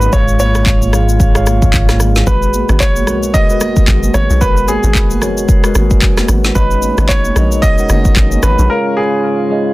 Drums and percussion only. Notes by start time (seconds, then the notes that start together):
0.02 shaker
0.13 kick, shaker
0.28 shaker
0.40 high conga, shaker
0.55 cross-stick, shaker
0.66 kick, clap, shaker
0.82 high conga, shaker
0.93 cross-stick, low conga, shaker
1.09 shaker
1.20 kick, shaker
1.35 cross-stick, shaker
1.47 cross-stick, high conga, shaker
1.62 kick, shaker
1.73 kick, clap, low conga, shaker
1.89 cross-stick, snare, high conga, shaker
2.00 cross-stick, high conga, low conga, shaker
2.16 snare, shaker
2.27 kick, shaker
2.42 shaker
2.54 high conga, shaker
2.69 cross-stick, shaker
2.80 kick, clap, shaker
2.96 high conga, shaker
3.07 cross-stick, low conga, shaker
3.23 shaker
3.34 kick, shaker
3.50 shaker
3.61 cross-stick, high conga, shaker
3.76 kick, shaker
3.88 kick, clap, low conga, shaker
4.03 high conga, shaker
4.14 cross-stick, high conga, low conga, shaker
4.30 shaker
4.41 kick, shaker
4.57 shaker
4.68 high conga, shaker
4.83 shaker
4.95 kick, clap, shaker
5.11 high conga, shaker
5.22 cross-stick, low conga, shaker
5.38 shaker
5.49 kick, shaker
5.64 cross-stick, shaker
5.75 cross-stick, high conga, shaker
5.91 kick, shaker
6.02 kick, clap, low conga, shaker
6.17 cross-stick, snare, high conga, shaker
6.28 cross-stick, high conga, low conga, shaker
6.44 snare, shaker
6.55 kick, shaker
6.71 shaker
6.82 high conga, shaker
6.98 cross-stick, shaker
7.09 kick, clap, shaker
7.25 high conga, shaker
7.36 cross-stick, low conga, shaker
7.52 shaker
7.63 kick, shaker
7.78 shaker
7.89 cross-stick, high conga, shaker
8.05 kick, shaker
8.16 kick, clap, low conga, shaker
8.32 high conga, shaker
8.43 cross-stick, high conga, low conga, shaker
8.59 shaker